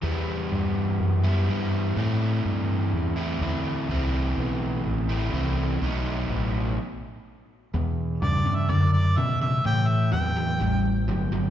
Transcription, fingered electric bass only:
X:1
M:4/4
L:1/8
Q:1/4=125
K:Em
V:1 name="Fingered electric bass" clef=bass
E,,2 G,,2 F,,2 G,,2 | A,,2 G,,2 E,,2 D,,2 | C,,2 B,,,2 A,,,2 C,,2 | B,,,2 A,,,2 z4 |
E,,2 G,,2 F,,2 B,,2 | A,,2 E,,2 A,,,2 G,,,2 |]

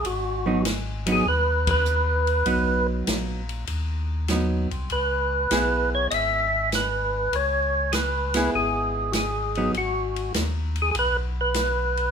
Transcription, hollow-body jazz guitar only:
X:1
M:4/4
L:1/8
Q:"Swing" 1/4=99
K:G#m
V:1 name="Hollow-body jazz guitar"
z [F,B,D] z [F,B,D] z4 | [F,B,D]3 z3 [F,B,D] z | z2 [B,EG]3 z3 | z3 [B,EG]3 z [F,B,D] |
z8 |]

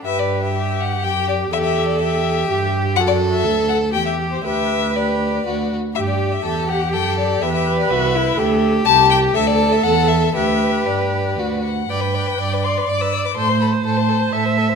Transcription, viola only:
X:1
M:3/4
L:1/8
Q:1/4=123
K:G
V:1 name="Viola"
B2 G4 | A4 G2 | F2 A2 G2 | B4- B z |
G2 G4 | B4 A2 | G2 A4 | B4- B z |
B2 d4 | c4 e2 |]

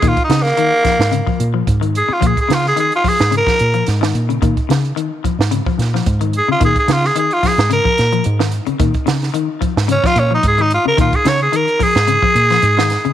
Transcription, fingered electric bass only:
X:1
M:4/4
L:1/16
Q:"Swing 16ths" 1/4=110
K:Bbm
V:1 name="Fingered electric bass" clef=bass
B,, z D,2 z3 A,,2 z B,,2 A,,3 z | B,, z D,2 z3 A,,2 z B,,2 A,,2 B,,2 | B,, z D,2 z3 A,,2 z B,,2 A,,3 z | B,, z D,2 z3 A,,2 z B,,2 A,,3 z |
B,, z D,2 z3 A,,2 z B,,2 A,,3 z | B,, z D,2 z3 A,,2 z B,,2 A,,3 z |]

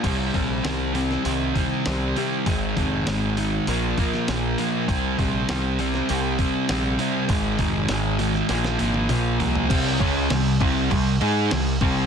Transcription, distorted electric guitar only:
X:1
M:4/4
L:1/8
Q:1/4=99
K:Cm
V:1 name="Distorted electric guitar" clef=bass
[C,G,C] [C,G,C] [C,G,C] [C,G,C] [C,G,C] [C,G,C] [C,G,C] [C,G,C] | [A,,E,A,] [A,,E,A,] [A,,E,A,] [A,,E,A,] [B,,F,B,] [B,,F,B,] [B,,F,B,] [B,,F,B,] | [C,G,C] [C,G,C] [C,G,C] [C,G,C] [C,G,C] [C,G,C] [C,G,C] [C,G,C] | [A,,E,A,] [A,,E,A,] [A,,E,A,] [A,,E,A,] [B,,F,B,] [B,,F,B,] [B,,F,B,] [B,,F,B,] |
[C,G,C] [_D,A,_D] [C,G,] [C,G,C] [C,G,] [A,EA] [C,G,] [C,G,C] |]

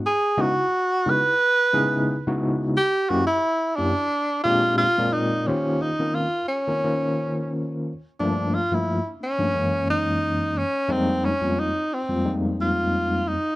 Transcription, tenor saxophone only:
X:1
M:4/4
L:1/16
Q:"Swing 16ths" 1/4=88
K:C#m
V:1 name="Tenor saxophone"
G2 F4 B8 z2 | =G2 F E3 =D4 ^E2 E2 ^D2 | [K:Ebmix] D2 E2 F2 D8 z2 | =D2 F _F2 z _D4 E4 D2 |
C2 D2 E2 C2 z2 F4 E2 |]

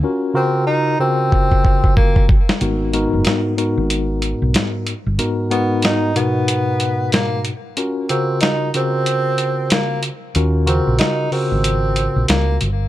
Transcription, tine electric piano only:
X:1
M:4/4
L:1/8
Q:"Swing 16ths" 1/4=93
K:G#m
V:1 name="Tine electric piano"
[C^EFA] [C,EFA]2 [C,EFA]4 z | [G,,B,DFA] [G,,B,DFA]2 [G,,B,DFA]4 z | [G,,B,DFA] [G,,B,DFA]2 [G,,B,,DFA]4 z | [C^EFA] [C,EFA]2 [C,EFA]4 z |
[C^EFA] [C,EFA]2 [C,EFA]4 z |]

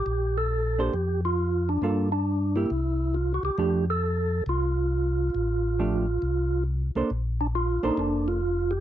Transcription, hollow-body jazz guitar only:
X:1
M:4/4
L:1/8
Q:"Swing" 1/4=136
K:F
V:1 name="Hollow-body jazz guitar"
z3 [B,DAc] z4 | [G,B,FA] z2 [B,EG] z4 | [F,A,DG] z6 z | z2 [F,A,DG] z4 [B,DAc] |
[K:Bb] z3 [B,DAc]3 z2 |]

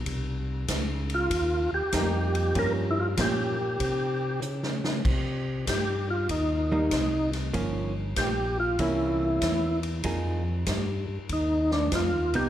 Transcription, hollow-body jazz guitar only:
X:1
M:4/4
L:1/8
Q:"Swing" 1/4=96
K:Cphr
V:1 name="Hollow-body jazz guitar"
z6 [G,B,E]2 | [F,B,D] z [F,B,D] z4 z | [K:Cm] z4 z [G,B,E] z2 | [F,B,_D] z3 [=E,B,D]3 z |
[F,B,EA] z6 [=B,E] |]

